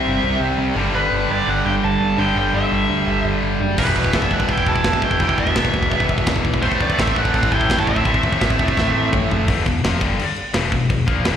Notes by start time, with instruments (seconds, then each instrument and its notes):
Already playing: distorted electric guitar C3 G3 C4, lead electric guitar E5
0.06 picked electric bass G1
0.23 picked electric bass C2
0.40 picked electric bass C2
0.58 picked electric bass C2
0.75 picked electric bass G1, distorted electric guitar G2 D3 G3
0.93 picked electric bass G1, lead electric guitar B4
1.12 picked electric bass G1
1.29 picked electric bass G1, lead electric guitar D5
1.47 picked electric bass G1, lead electric guitar F#5
1.65 picked electric bass G1, lead electric guitar G5
1.84 picked electric bass G1, lead electric guitar A5
2.01 picked electric bass G1
2.18 picked electric bass G1, distorted electric guitar G2 D3 G3, lead electric guitar G5
2.36 picked electric bass G1, lead electric guitar G5
2.53 picked electric bass G1, lead electric guitar E5
2.72 picked electric bass G1
2.90 picked electric bass D2
3.06 picked electric bass G1
3.24 picked electric bass G1
3.42 picked electric bass G1
3.60 picked electric bass F#1
3.78 picked electric bass E1, distorted electric guitar E2 B2 E3, lead electric guitar G3 B4, kick, crash, china
3.87 kick
3.96 picked electric bass E1, kick
4.04 kick
4.13 picked electric bass E1, lead electric guitar B3 E5, kick, snare, china
4.22 kick
4.31 picked electric bass E1, lead electric guitar D4 F#5, kick
4.40 kick
4.48 picked electric bass E1, lead electric guitar E4 G5, kick, china
4.58 kick
4.67 picked electric bass E1, lead electric guitar E4 A5, kick
4.76 kick
4.84 picked electric bass E1, kick, snare, china
4.93 kick
5.02 picked electric bass E1, lead electric guitar E4 G5, kick
5.11 kick
5.19 picked electric bass E1, distorted electric guitar E2 B2 E3, lead electric guitar E4 G5, kick, china
5.29 kick
5.38 picked electric bass E1, lead electric guitar B3 E5, kick
5.47 kick
5.55 picked electric bass E1, kick, snare, china
5.65 kick
5.74 picked electric bass B1, kick
5.83 kick
5.91 picked electric bass E1, kick, china
6.00 kick
6.09 picked electric bass E1, kick
6.18 kick
6.27 picked electric bass E1, kick, snare, china
6.36 kick
6.45 picked electric bass B1, kick
6.54 kick
6.62 picked electric bass A1, distorted electric guitar A2 E3 A3, lead electric guitar A3 C5, kick, china
6.72 kick
6.80 picked electric bass A1, lead electric guitar B3 D5, kick
6.90 kick
6.98 picked electric bass A1, lead electric guitar C4 E5, kick, snare, china
7.07 kick
7.16 picked electric bass A1, lead electric guitar D4 F#5, kick
7.25 kick
7.34 picked electric bass A1, lead electric guitar C4 F#5, kick, china
7.43 kick
7.51 picked electric bass A1, lead electric guitar E4 G5, kick
7.61 kick
7.70 picked electric bass A1, kick, snare, china
7.77 lead electric guitar F#4 A5, kick
7.87 picked electric bass A1, lead electric guitar C4 E5, kick
7.96 kick
8.05 picked electric bass A1, distorted electric guitar A2 E3 A3, kick, china
8.14 kick
8.23 picked electric bass A1, kick
8.32 kick
8.41 picked electric bass A1, kick, snare, china
8.50 kick
8.59 picked electric bass E1, kick
8.68 kick
8.77 picked electric bass A1, kick, snare
8.94 picked electric bass A1
9.13 picked electric bass A1, kick, mid tom
9.31 picked electric bass F#1, floor tom
9.48 picked electric bass E1, distorted electric guitar E2 B2 E3, kick, crash
9.66 picked electric bass E1, distorted electric guitar E2 B2, kick, crash
9.84 picked electric bass F1, distorted electric guitar F2 C3 F3, snare, crash
10.01 picked electric bass G1, distorted electric guitar G2 D3 G3, kick, crash
10.19 crash
10.36 crash
10.54 picked electric bass E1, distorted electric guitar E2 B2 E3, snare, crash
10.72 picked electric bass E1, distorted electric guitar E2 B2, kick, crash
10.89 picked electric bass E1, distorted electric guitar E2 B2, kick, crash
11.07 picked electric bass A#1, distorted electric guitar A#2 F3 A#3, kick, crash
11.25 picked electric bass E1, distorted electric guitar E2 B2 E3, snare, crash